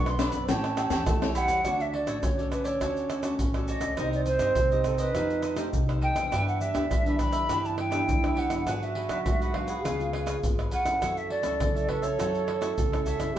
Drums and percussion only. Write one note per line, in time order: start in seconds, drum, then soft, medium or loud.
0.06 snare soft
0.06 pandeiro soft
0.06 tamborim medium
0.06 shaker soft
0.19 snare medium
0.19 pandeiro medium
0.19 tamborim medium
0.19 high agogo medium
0.19 shaker medium
0.32 snare soft
0.32 pandeiro medium
0.32 shaker medium
0.32 surdo soft
0.48 snare medium
0.48 pandeiro medium
0.48 low agogo medium
0.48 shaker medium
0.48 surdo medium
0.64 snare soft
0.64 pandeiro soft
0.64 tamborim medium
0.64 shaker soft
0.77 snare soft
0.77 pandeiro medium
0.77 tamborim medium
0.77 low agogo medium
0.77 shaker medium
0.90 snare medium
0.90 pandeiro medium
0.90 low agogo medium
0.90 shaker medium
0.90 surdo soft
1.06 snare soft
1.06 pandeiro medium
1.06 tamborim medium
1.06 shaker medium
1.06 surdo loud
1.22 snare medium
1.22 pandeiro soft
1.22 tamborim medium
1.22 shaker soft
1.35 snare soft
1.35 pandeiro medium
1.35 high agogo medium
1.35 shaker medium
1.35 surdo soft
1.48 snare soft
1.48 pandeiro medium
1.48 high agogo medium
1.48 shaker medium
1.65 pandeiro medium
1.65 tamborim medium
1.65 shaker medium
1.65 surdo medium
1.80 pandeiro soft
1.80 shaker soft
1.94 pandeiro medium
2.07 pandeiro medium
2.07 tamborim medium
2.07 shaker medium
2.23 pandeiro medium
2.23 tamborim medium
2.23 shaker medium
2.23 surdo medium
2.39 pandeiro soft
2.39 shaker soft
2.52 pandeiro medium
2.52 tamborim medium
2.52 shaker medium
2.65 pandeiro medium
2.65 shaker medium
2.81 pandeiro medium
2.81 tamborim medium
2.81 shaker medium
2.81 surdo medium
2.97 pandeiro soft
2.97 shaker soft
3.10 pandeiro medium
3.10 tamborim medium
3.10 shaker medium
3.23 pandeiro medium
3.23 tamborim medium
3.23 shaker medium
3.39 pandeiro medium
3.39 shaker medium
3.39 surdo medium
3.54 pandeiro soft
3.54 tamborim medium
3.54 shaker soft
3.68 pandeiro medium
3.68 shaker medium
3.81 pandeiro medium
3.81 tamborim medium
3.81 shaker medium
3.97 pandeiro medium
3.97 tamborim medium
3.97 shaker medium
3.97 surdo medium
4.13 pandeiro soft
4.13 shaker soft
4.26 pandeiro medium
4.26 shaker medium
4.39 pandeiro medium
4.39 tamborim medium
4.39 shaker medium
4.55 pandeiro medium
4.55 tamborim medium
4.55 shaker medium
4.55 surdo loud
4.72 pandeiro soft
4.72 shaker soft
4.84 pandeiro medium
4.84 tamborim medium
4.84 shaker medium
4.84 surdo medium
4.98 pandeiro medium
4.98 shaker medium
5.15 pandeiro medium
5.15 tamborim medium
5.15 shaker medium
5.15 surdo medium
5.30 pandeiro soft
5.30 shaker soft
5.42 pandeiro medium
5.42 tamborim medium
5.42 shaker medium
5.57 pandeiro medium
5.57 tamborim medium
5.57 shaker medium
5.73 pandeiro medium
5.73 shaker medium
5.73 surdo medium
5.89 pandeiro soft
5.89 tamborim medium
5.89 shaker soft
6.02 pandeiro medium
6.16 pandeiro medium
6.16 tamborim medium
6.16 shaker medium
6.32 pandeiro medium
6.32 tamborim medium
6.32 shaker medium
6.32 surdo medium
6.48 pandeiro soft
6.48 shaker soft
6.61 pandeiro medium
6.61 shaker medium
6.75 pandeiro medium
6.75 tamborim medium
6.75 shaker medium
6.91 pandeiro medium
6.91 tamborim medium
6.91 shaker medium
6.91 surdo medium
7.06 pandeiro soft
7.06 shaker soft
7.19 pandeiro medium
7.19 tamborim medium
7.19 shaker medium
7.19 surdo medium
7.32 pandeiro medium
7.32 shaker medium
7.49 pandeiro medium
7.49 tamborim medium
7.49 shaker medium
7.49 surdo medium
7.65 pandeiro soft
7.65 shaker soft
7.78 pandeiro medium
7.78 tamborim medium
7.92 pandeiro medium
7.92 tamborim medium
7.92 shaker medium
8.09 pandeiro medium
8.09 shaker medium
8.09 surdo medium
8.24 pandeiro soft
8.24 tamborim medium
8.24 shaker soft
8.37 pandeiro medium
8.50 pandeiro medium
8.50 tamborim medium
8.50 shaker medium
8.67 pandeiro medium
8.67 tamborim medium
8.67 shaker medium
8.67 surdo medium
8.83 pandeiro soft
8.83 shaker soft
8.95 pandeiro medium
9.09 pandeiro medium
9.09 tamborim medium
9.09 shaker medium
9.26 pandeiro medium
9.26 tamborim medium
9.26 shaker medium
9.26 surdo loud
9.42 pandeiro soft
9.42 shaker soft
9.54 pandeiro medium
9.54 tamborim medium
9.54 surdo medium
9.68 pandeiro medium
9.68 shaker medium
9.85 pandeiro medium
9.85 tamborim medium
9.85 shaker medium
9.85 surdo medium
10.00 pandeiro soft
10.00 shaker soft
10.13 pandeiro medium
10.13 tamborim medium
10.27 pandeiro medium
10.27 tamborim medium
10.27 shaker medium
10.43 pandeiro medium
10.43 shaker medium
10.43 surdo medium
10.59 pandeiro soft
10.59 tamborim medium
10.59 shaker soft
10.71 pandeiro medium
10.71 shaker medium
10.86 pandeiro medium
10.86 tamborim medium
10.86 shaker medium
11.02 pandeiro medium
11.02 tamborim medium
11.02 shaker medium
11.02 surdo medium
11.17 pandeiro soft
11.17 shaker soft
11.30 pandeiro medium
11.43 pandeiro medium
11.43 tamborim medium
11.43 shaker medium
11.60 pandeiro medium
11.60 tamborim medium
11.60 shaker medium
11.60 surdo medium
11.76 pandeiro soft
11.76 shaker soft
11.89 pandeiro medium
11.89 tamborim medium
11.89 surdo medium
12.03 pandeiro medium
12.03 shaker medium
12.20 pandeiro medium
12.20 tamborim medium
12.20 shaker medium
12.20 surdo medium
12.35 pandeiro soft
12.35 shaker soft
12.48 pandeiro medium
12.48 tamborim medium
12.62 pandeiro medium
12.62 tamborim medium
12.62 shaker medium
12.78 pandeiro medium
12.78 shaker medium
12.78 surdo medium
12.93 pandeiro soft
12.93 tamborim medium
12.93 shaker soft
13.06 pandeiro medium
13.06 shaker medium
13.20 pandeiro medium
13.20 tamborim medium
13.20 shaker medium